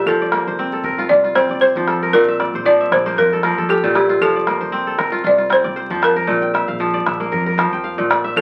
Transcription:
Already playing: A#2 A#3 A#4 E5 G5
0.06 F1 F3 A4, calabash thump
0.22 D5
0.32 A#3, calabash click
0.47 F1 C5
0.59 C4
0.73 A4
0.84 F1 A#4, calabash thump
0.98 F4, calabash click
1.09 C2 F4 D5
1.24 F4, calabash click
1.35 C4 C5, calabash click
1.49 C2 D5, calabash thump, calabash click
1.61 C5, calabash click
1.76 F2 F3, calabash click
1.88 A4, calabash click
2.03 A#4, calabash click
2.13 A#1 A#2 A#4 F5, calabash thump
2.28 E5
2.40 D5, calabash click
2.54 A#1 C5
2.65 F3 D5
2.81 E5
2.91 A#1 C5 D5, calabash thump, calabash click
3.06 A#3 C5, calabash click
3.17 F2 A#4
3.33 A4, calabash click
3.43 F3 A#4, calabash click
3.57 F2 A4, calabash thump, calabash click
3.69 G4 A4, calabash click
3.83 A#2 F4, calabash click
3.95 E4 G4, calabash click
4.09 F4, calabash click
4.21 F1 F3 A4, calabash thump
4.36 D5
4.47 A#3, calabash click
4.61 F1 C5
4.72 C4
4.87 A4
4.98 F1 A#4, calabash thump, calabash click
5.12 F4, calabash click
5.24 C2 F4 D5
5.38 F4, calabash click
5.50 C4 C5, calabash click
5.64 C2 D5, calabash thump, calabash click
5.76 C5, calabash click
5.90 F2 F3, calabash click
6.02 A#4 A5, calabash click
6.16 A#4, calabash click
6.27 A#1 A#2, calabash thump, calabash click
6.42 G5
6.54 E5, calabash click
6.68 A#1 F5
6.80 F3
6.94 D5
7.06 A#1 E5, calabash thump, calabash click
7.20 A#3
7.32 F2 A#4
7.46 A#4, calabash click
7.58 F3, calabash click
7.72 F2 G5, calabash thump
7.84 F5
7.98 A#2
8.10 D5, calabash click
8.24 E5, calabash click
8.36 F2 F3 A4

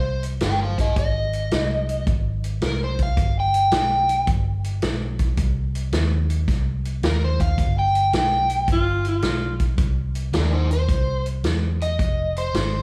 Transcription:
Already playing: C2 C5
0.23 closed hi-hat
0.40 G1 A#4 G5, snare, closed hi-hat
0.62 C5 F5
0.78 G4 D#5, kick, closed hi-hat
0.96 G#1 D#5, kick, closed hi-hat
1.33 closed hi-hat
1.51 C2, snare, closed hi-hat
1.89 closed hi-hat
2.07 G#1, kick, closed hi-hat
2.44 closed hi-hat
2.61 C2, snare, closed hi-hat
2.66 A#4
2.84 C5
2.99 kick, closed hi-hat
3.03 F5
3.17 G1, kick, closed hi-hat
3.40 G5
3.54 closed hi-hat
3.72 B1, snare, closed hi-hat
3.77 G5
4.09 closed hi-hat
4.27 G1, kick, closed hi-hat
4.64 closed hi-hat
4.82 B1, snare, closed hi-hat
5.19 kick, closed hi-hat
5.37 C2, kick, closed hi-hat
5.75 closed hi-hat
5.92 D#2, snare, closed hi-hat
6.30 closed hi-hat
6.48 C2, kick, snare, closed hi-hat
6.85 closed hi-hat
7.02 D#2 A#4, snare, closed hi-hat
7.24 C5
7.40 F5, kick, closed hi-hat
7.58 G1, kick, closed hi-hat
7.79 G5
7.95 closed hi-hat
8.13 B1 G5, snare, closed hi-hat
8.50 closed hi-hat
8.68 G1, kick, closed hi-hat
8.72 F4
9.05 F4, closed hi-hat
9.22 B1, snare, closed hi-hat
9.60 kick, closed hi-hat
9.78 C2, kick, closed hi-hat
10.15 closed hi-hat
10.32 D#2 D4 A#4, snare, closed hi-hat
10.53 D#4 C5
10.71 C5, closed hi-hat
10.89 C2, kick, closed hi-hat
11.26 closed hi-hat
11.44 E2, snare, closed hi-hat
11.81 D#5, closed hi-hat
11.99 F1, kick, closed hi-hat
12.37 C5, closed hi-hat
12.54 G#1, snare, closed hi-hat

